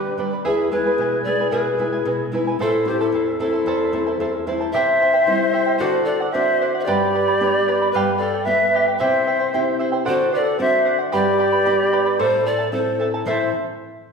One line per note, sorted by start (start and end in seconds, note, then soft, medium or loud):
0.00 0.43 D3 medium
0.00 0.15 G4 medium
0.00 0.14 B4 medium
0.00 0.18 B4 medium
0.00 0.18 D5 medium
0.00 0.17 G5 medium
0.00 0.19 B5 medium
0.18 0.39 G3 soft
0.18 0.40 B3 soft
0.18 0.40 D4 soft
0.18 0.32 B4 medium
0.18 0.32 D5 medium
0.18 0.32 G5 medium
0.18 0.31 B5 medium
0.32 0.44 B4 soft
0.32 0.45 D5 soft
0.32 0.45 B5 soft
0.45 0.97 E2 medium
0.45 0.71 E4 medium
0.45 0.70 E4 medium
0.45 0.72 G#4 medium
0.45 0.70 G#4 medium
0.45 0.71 B4 medium
0.45 0.70 E5 medium
0.45 0.72 G#5 medium
0.71 1.15 G#3 soft
0.71 1.15 B3 soft
0.71 0.86 E4 medium
0.71 1.15 E4 medium
0.71 1.22 G#4 medium
0.71 1.22 B4 medium
0.71 0.86 B4 medium
0.71 0.85 E5 soft
0.71 0.85 G#5 medium
0.86 0.99 E4 soft
0.86 0.99 B4 medium
0.86 0.99 G#5 soft
0.98 1.50 B2 medium
0.98 1.26 E4 medium
0.98 1.26 B4 medium
0.98 1.25 E5 soft
0.98 1.27 G#5 medium
1.24 1.68 G#3 medium
1.24 1.68 B3 soft
1.24 1.69 E4 soft
1.24 1.40 E4 medium
1.24 1.51 G#4 medium
1.24 1.39 B4 medium
1.24 1.49 D5 medium
1.24 1.39 E5 medium
1.28 1.39 G#5 medium
1.40 1.51 E4 soft
1.40 1.51 B4 soft
1.40 1.52 G#5 medium
1.51 2.04 B2 medium
1.51 1.79 E4 medium
1.51 2.29 G#4 medium
1.51 1.79 G#4 medium
1.51 2.28 B4 medium
1.51 1.79 B4 medium
1.51 1.79 E5 medium
1.51 1.79 G#5 medium
1.78 2.21 G#3 soft
1.78 2.22 B3 soft
1.78 2.22 E4 soft
1.78 1.93 E4 medium
1.78 1.92 B4 medium
1.78 1.93 E5 soft
1.78 1.91 G#5 medium
1.93 2.06 E4 soft
1.93 2.06 B4 medium
1.93 2.06 G#5 medium
2.05 2.58 B2 medium
2.05 2.33 E4 medium
2.05 2.33 B4 medium
2.05 2.32 E5 soft
2.05 2.33 G#5 medium
2.32 2.54 G#3 soft
2.32 2.54 B3 soft
2.32 2.54 E4 medium
2.32 2.47 E4 medium
2.32 2.46 B4 medium
2.32 2.46 E5 medium
2.32 2.46 G#5 medium
2.47 2.60 E4 soft
2.47 2.60 B4 soft
2.47 2.60 G#5 medium
2.59 3.11 A2 medium
2.59 2.86 E4 medium
2.59 2.68 F4 medium
2.59 2.87 A4 medium
2.59 2.89 A4 loud
2.59 2.86 C5 medium
2.59 2.85 E5 medium
2.59 2.87 A5 medium
2.67 2.89 E4 medium
2.85 3.28 A3 medium
2.85 3.28 C4 soft
2.85 3.29 E4 medium
2.85 3.00 E4 medium
2.85 3.03 G4 medium
2.85 3.02 C5 medium
2.85 3.00 C5 medium
2.85 3.00 E5 medium
2.85 3.00 A5 medium
3.00 3.41 E4 medium
3.00 3.13 E4 soft
3.00 3.39 A4 medium
3.00 3.14 C5 soft
3.00 3.14 A5 medium
3.12 3.65 E2 medium
3.12 3.40 E4 medium
3.12 3.40 C5 medium
3.12 3.39 E5 medium
3.12 3.40 A5 medium
3.39 3.83 A3 soft
3.39 3.83 C4 soft
3.39 3.83 E4 medium
3.39 3.53 E4 medium
3.39 4.44 E4 medium
3.39 4.43 A4 medium
3.39 3.52 C5 medium
3.39 3.53 E5 medium
3.39 3.52 A5 medium
3.53 3.66 E4 soft
3.53 3.67 C5 soft
3.53 3.66 A5 medium
3.66 4.18 E2 medium
3.66 3.92 E4 medium
3.66 3.93 A4 medium
3.66 3.93 C5 medium
3.66 3.92 E5 medium
3.66 3.93 A5 medium
3.93 4.36 A3 soft
3.93 4.36 C4 soft
3.93 4.36 E4 medium
3.93 4.07 E4 medium
3.93 4.06 C5 medium
3.93 4.06 E5 medium
3.93 4.05 A5 medium
4.06 4.20 E4 medium
4.06 4.20 C5 medium
4.06 4.20 A5 medium
4.20 4.72 E2 medium
4.20 4.46 E4 medium
4.20 4.47 C5 medium
4.20 4.46 E5 medium
4.20 4.47 A5 medium
4.47 4.68 A3 soft
4.47 4.68 C4 soft
4.47 4.68 E4 medium
4.47 4.60 E4 medium
4.47 4.60 C5 medium
4.47 4.60 E5 medium
4.47 4.59 A5 medium
4.61 4.74 E4 soft
4.61 4.74 C5 medium
4.61 4.74 A5 medium
4.72 5.77 C3 medium
4.72 5.00 E4 medium
4.72 5.01 G4 medium
4.72 5.76 C5 loud
4.72 5.00 C5 medium
4.72 5.76 E5 loud
4.72 4.99 E5 medium
4.72 5.01 G5 medium
5.00 5.14 E4 medium
5.00 5.13 C5 medium
5.00 5.14 E5 medium
5.00 5.12 G5 medium
5.13 5.27 E4 soft
5.13 5.27 C5 medium
5.13 5.27 G5 medium
5.26 5.78 G3 medium
5.26 5.78 C4 soft
5.26 5.79 E4 medium
5.26 5.52 E4 medium
5.26 5.53 C5 medium
5.26 5.52 E5 medium
5.26 5.53 G5 medium
5.53 5.66 E4 medium
5.53 5.66 C5 medium
5.53 5.67 E5 medium
5.53 5.65 G5 medium
5.66 5.80 E4 soft
5.66 5.79 C5 medium
5.66 5.80 G5 medium
5.78 6.84 D3 medium
5.78 6.04 F#4 medium
5.78 6.07 F#4 loud
5.78 6.07 A4 medium
5.78 6.04 C5 loud
5.78 6.06 C5 medium
5.78 6.07 D5 medium
5.78 6.07 F#5 medium
6.04 6.21 F#4 medium
6.04 6.31 A4 medium
6.04 6.20 C5 medium
6.04 6.30 D5 medium
6.04 6.21 D5 medium
6.09 6.19 F#5 medium
6.21 6.33 F#4 soft
6.21 6.34 D5 medium
6.21 6.34 F#5 medium
6.31 6.86 C4 medium
6.31 6.86 D4 medium
6.31 6.60 F#4 medium
6.31 6.70 C5 medium
6.31 6.60 C5 medium
6.31 6.69 E5 loud
6.35 6.86 F#4 medium
6.35 6.61 D5 medium
6.35 6.61 F#5 medium
6.61 6.74 F#4 medium
6.61 6.74 C5 medium
6.61 6.74 D5 medium
6.61 6.74 F#5 medium
6.75 6.88 F#4 soft
6.75 6.87 D5 soft
6.75 6.88 F#5 medium
6.80 6.87 C5 medium
6.80 6.85 E5 medium
6.84 7.91 G2 medium
6.84 7.91 G4 medium
6.84 7.14 G4 loud
6.84 7.93 D5 loud
6.84 7.13 G5 medium
6.88 7.14 B4 loud
6.88 7.14 D5 medium
6.88 7.14 B5 medium
7.14 7.27 B4 medium
7.14 7.28 D5 medium
7.14 7.27 G5 medium
7.14 7.27 B5 medium
7.28 7.41 B4 soft
7.28 7.41 D5 soft
7.28 7.41 B5 medium
7.40 7.92 B3 medium
7.40 7.92 D4 soft
7.40 7.92 G4 medium
7.40 7.67 B4 medium
7.40 7.67 D5 medium
7.40 7.66 G5 medium
7.40 7.68 B5 medium
7.68 7.81 B4 medium
7.68 7.81 D5 medium
7.68 7.81 G5 medium
7.68 7.80 B5 medium
7.82 7.93 B4 soft
7.82 7.94 D5 soft
7.82 7.94 B5 medium
7.91 8.97 G2 medium
7.91 8.17 G4 medium
7.91 8.17 B4 medium
7.91 8.21 B4 medium
7.91 8.19 F5 medium
7.96 8.20 G4 medium
7.96 8.20 D5 loud
7.96 8.21 G5 medium
8.17 8.34 G4 medium
8.17 8.47 A4 medium
8.17 8.46 D5 medium
8.17 8.34 F5 medium
8.22 8.34 D5 medium
8.22 8.33 G5 medium
8.34 8.46 G4 soft
8.34 8.47 D5 medium
8.34 8.47 G5 medium
8.44 8.98 B3 medium
8.44 8.98 F4 soft
8.44 8.99 G4 medium
8.44 8.73 G4 medium
8.44 8.86 B4 medium
8.44 8.74 D5 medium
8.44 8.86 E5 loud
8.44 8.73 F5 medium
8.49 8.74 G5 medium
8.74 8.87 G4 medium
8.74 8.87 D5 medium
8.74 8.87 F5 medium
8.74 8.86 G5 medium
8.88 8.98 G4 soft
8.88 9.00 D5 medium
8.88 9.00 G5 medium
8.98 10.04 C3 medium
8.98 9.26 E4 medium
8.98 9.27 G4 medium
8.98 9.76 C5 medium
8.98 9.26 C5 medium
8.98 9.75 E5 loud
8.98 9.26 E5 medium
8.98 9.27 G5 medium
9.27 9.40 E4 medium
9.27 9.39 C5 medium
9.27 9.40 E5 medium
9.27 9.38 G5 medium
9.39 9.52 E4 soft
9.39 9.53 C5 medium
9.39 9.53 G5 medium
9.53 10.05 C4 soft
9.53 9.79 E4 medium
9.53 10.05 E4 soft
9.53 10.06 G4 medium
9.53 9.79 C5 medium
9.53 9.78 E5 medium
9.53 9.79 G5 medium
9.79 9.92 E4 medium
9.79 9.92 C5 medium
9.79 9.93 E5 medium
9.79 9.91 G5 medium
9.92 10.05 E4 soft
9.92 10.04 C5 medium
9.92 10.06 G5 medium
10.05 11.10 D3 medium
10.05 10.31 F#4 medium
10.05 10.33 F#4 medium
10.05 10.32 A4 medium
10.05 10.31 C5 medium
10.05 10.32 C5 loud
10.05 10.32 D5 medium
10.05 10.33 F#5 loud
10.32 10.45 F#4 medium
10.32 10.40 B4 medium
10.32 10.46 C5 medium
10.32 10.45 D5 medium
10.32 10.59 D5 loud
10.32 10.44 F#5 medium
10.39 10.59 A4 medium
10.45 10.58 F#4 soft
10.45 10.58 D5 soft
10.45 10.58 F#5 medium
10.58 11.11 C4 medium
10.58 11.11 D4 soft
10.58 10.84 F#4 medium
10.58 11.12 F#4 medium
10.58 10.83 C5 medium
10.58 10.97 C5 medium
10.58 10.85 D5 medium
10.58 10.97 E5 loud
10.58 10.85 F#5 medium
10.85 10.99 F#4 medium
10.85 10.99 C5 medium
10.85 10.98 D5 medium
10.85 10.97 F#5 medium
10.99 11.12 F#4 soft
10.99 11.11 D5 medium
10.99 11.13 F#5 medium
11.12 12.16 G2 medium
11.12 11.39 G4 medium
11.12 12.21 G4 loud
11.12 11.38 B4 medium
11.12 11.38 D5 loud
11.12 12.21 D5 loud
11.12 11.37 G5 medium
11.12 11.39 B5 loud
11.39 11.52 B4 medium
11.39 11.52 D5 medium
11.39 11.53 G5 medium
11.39 11.51 B5 medium
11.52 11.65 B4 medium
11.52 11.65 D5 medium
11.52 11.66 B5 medium
11.65 12.18 B3 medium
11.65 12.18 D4 soft
11.65 12.18 G4 medium
11.65 11.91 B4 medium
11.65 11.92 D5 medium
11.65 11.91 G5 medium
11.65 11.92 B5 medium
11.92 12.05 B4 medium
11.92 12.05 D5 medium
11.92 12.06 G5 medium
11.92 12.04 B5 medium
12.06 12.20 B4 soft
12.06 12.20 D5 medium
12.06 12.19 B5 medium
12.19 13.23 A2 medium
12.19 12.45 E4 medium
12.19 12.46 A4 medium
12.19 12.45 A4 medium
12.19 12.46 C5 medium
12.19 12.48 C5 loud
12.19 12.44 E5 medium
12.19 12.46 A5 medium
12.45 12.59 E4 medium
12.45 12.72 A4 medium
12.45 12.59 A4 medium
12.45 12.73 D5 loud
12.45 12.59 E5 soft
12.45 12.57 A5 medium
12.59 12.72 E4 soft
12.59 12.72 A4 soft
12.59 12.73 A5 medium
12.72 13.24 C4 medium
12.72 13.25 E4 soft
12.72 12.99 E4 medium
12.72 13.10 A4 medium
12.72 13.25 A4 medium
12.72 12.99 A4 medium
12.72 13.10 C5 medium
12.72 12.98 E5 medium
12.72 13.00 A5 medium
12.99 13.13 E4 medium
12.99 13.13 A4 medium
12.99 13.13 E5 medium
12.99 13.13 A5 medium
13.14 13.27 E4 soft
13.14 13.27 A4 soft
13.14 13.27 A5 medium
13.25 13.51 A2 medium
13.25 13.51 E3 medium
13.25 13.51 A3 medium
13.25 13.51 C4 medium
13.25 13.51 E4 medium
13.25 13.49 E4 medium
13.25 13.49 A4 medium
13.25 13.48 C5 loud
13.25 13.52 C5 medium
13.25 13.51 E5 medium
13.25 13.48 E5 medium
13.25 13.49 A5 loud